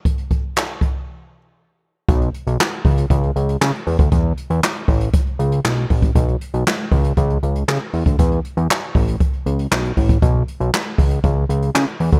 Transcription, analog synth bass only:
X:1
M:4/4
L:1/16
Q:1/4=118
K:Amix
V:1 name="Analog synth bass" clef=bass
z16 | B,,,2 z B,,, z2 C,,2 C,,2 C,,2 C, z E,, D,, | E,,2 z E,, z2 A,,,2 z2 C,,2 B,,,2 A,,,2 | B,,,2 z B,,, z2 C,,2 C,,2 C,,2 C, z E,, D,, |
E,,2 z E,, z2 A,,,2 z2 C,,2 B,,,2 A,,,2 | B,,,2 z B,,, z2 C,,2 C,,2 C,,2 C, z E,, D,, |]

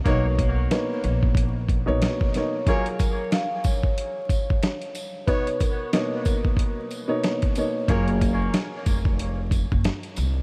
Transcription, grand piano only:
X:1
M:4/4
L:1/16
Q:"Swing 16ths" 1/4=92
K:F#
V:1 name="Grand piano"
[B,,A,Dc]4 [A,B,Dc]6 z [B,,A,Dc]3 [B,,A,Dc]2 | [F,EGA]12- [F,EGA]3 z | [B,,B,Dc]4 [B,,A,Dc]6 z [B,,A,Dc]3 [B,,A,Dc]2 | [F,EGA]12- [F,EGA]3 z |]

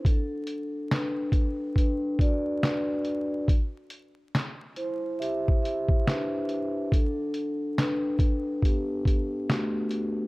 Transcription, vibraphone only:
X:1
M:4/4
L:1/16
Q:"Swing 16ths" 1/4=70
K:Dmix
V:1 name="Vibraphone"
[DA]4 [DB]4 [DB]2 [Fd]2 [DB]3 z | z6 [Ec]2 [Ge]2 [Ge]2 [DB]3 z | [DA]4 [DB]4 [B,G]4 [A,F]3 z |]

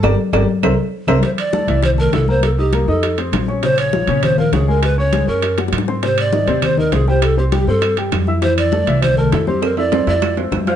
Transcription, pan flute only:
X:1
M:4/4
L:1/8
Q:1/4=200
K:F
V:1 name="Pan flute"
z8 | c d3 c B A c | A G2 A2 z3 | c _d3 c B _A B |
=B _d2 _B2 z3 | c d3 c B _A c | A G G A2 z3 | c d3 c B A G |
B d2 d2 z2 c |]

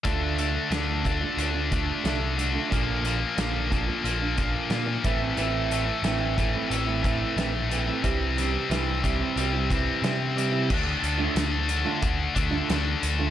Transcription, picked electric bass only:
X:1
M:4/4
L:1/8
Q:1/4=90
K:Dm
V:1 name="Picked electric bass" clef=bass
D,,2 D,,2 D,,2 C,,2 | B,,,2 B,,,2 B,,,2 B,, A,,, | A,,,2 A,,,2 A,,,2 B,,,2 | C,,2 C,,2 C,,2 C,2 |
D,, D,, D,,2 D,, D,, D,, D,, |]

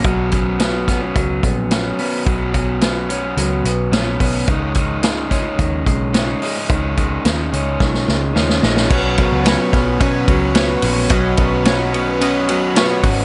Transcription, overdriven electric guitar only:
X:1
M:4/4
L:1/8
Q:1/4=108
K:Blyd
V:1 name="Overdriven electric guitar"
[B,,F,B,C] [F,B,C] [B,,F,B,C] [F,B,C]3 [B,,F,B,C] [F,B,C] | [B,,F,B,C] [F,B,C] [B,,F,B,C] [F,B,C]3 [B,,F,B,C] [F,B,C] | [C,G,CD] [G,CD] [C,G,CD] [G,CD]3 [C,G,CD] [G,CD] | [C,G,CD] [G,CD] [C,G,CD] [G,CD]3 [C,G,CD] [G,CD] |
[B,,F,B,C] [F,B,C] [B,,F,B,C] [F,B,C] [B,,F,B,C] [F,B,C] [B,,F,B,C]2 | [B,,F,B,C] [F,B,C] [B,,F,B,C] [F,B,C] [B,,F,B,C] [F,B,C] [B,,F,B,C]2 |]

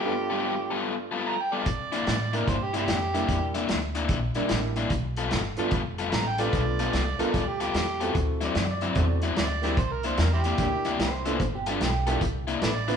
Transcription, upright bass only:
X:1
M:4/4
L:1/8
Q:"Swing" 1/4=148
K:Gmix
V:1 name="Upright bass" clef=bass
z8 | C,2 A,,2 G,,2 F,,2 | E,,2 D,,2 _B,,, z A,,,2 | B,,,2 G,,, z F,,,2 A,,,2 |
B,,,2 C,, z D,,2 E,,2 | D,,2 ^F,,2 E,,2 D,,2 | C,,2 E,,2 D,,2 C,,2 | G,,,2 B,,,2 C,,2 A,,,2 |]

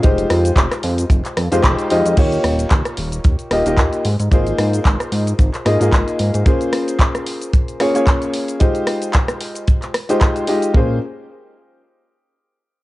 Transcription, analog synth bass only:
X:1
M:4/4
L:1/16
Q:"Swing 16ths" 1/4=112
K:Fm
V:1 name="Analog synth bass" clef=bass
F,,,2 F,,2 F,,, z F,,2 F,,, z F,, F,, F,,, z F,, F,, | E,,2 E,,,2 E,, z E,,,2 E,, z E,,, E,,, E,, z A,, A,, | A,,,2 A,,2 A,,, z A,,2 A,,, z A,, A,, A,,, z A,, A,, | z16 |
z16 | B,,,2 z12 z2 |]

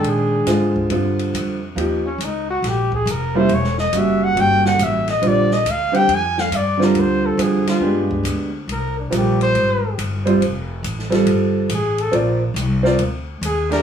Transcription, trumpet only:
X:1
M:4/4
L:1/8
Q:"Swing" 1/4=139
K:Bbmix
V:1 name="Trumpet"
A4 z4 | z _D E _G =G A B c | ^c e =e _g =g _g e _e | d e f g a f d B |
c =A _A F2 z3 | B D G c3 z2 | z6 A =A | z6 A B |]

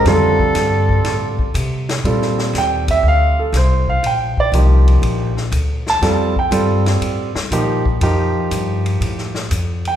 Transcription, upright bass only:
X:1
M:4/4
L:1/8
Q:"Swing" 1/4=121
K:Fm
V:1 name="Upright bass" clef=bass
F,,2 G,,2 =A,, z C,2 | [K:Bb] B,,2 E,,2 D,,2 C,,2 | B,,,2 C,,2 B,,,2 D,,2 | F,,2 G,,2 A,, z B,,2 |
F,,2 G,,2 A,,2 F,,2 |]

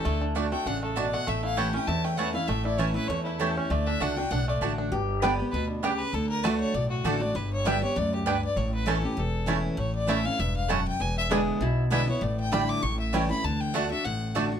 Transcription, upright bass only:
X:1
M:4/4
L:1/8
Q:"Swing" 1/4=197
K:D
V:1 name="Upright bass" clef=bass
D,,4 A,,,4 | A,,,4 E,,4 | A,,,4 E,,4 | D,,2 C,,2 B,,,2 A,,,2 |
G,,,4 D,,4 | D,,4 B,,,2 A,,,2 | G,,,4 D,,4 | A,,,4 E,,,4 |
A,,,4 E,,,4 | E,,,4 B,,,4 | A,,,4 A,,,4 | D,,4 A,,,4 |]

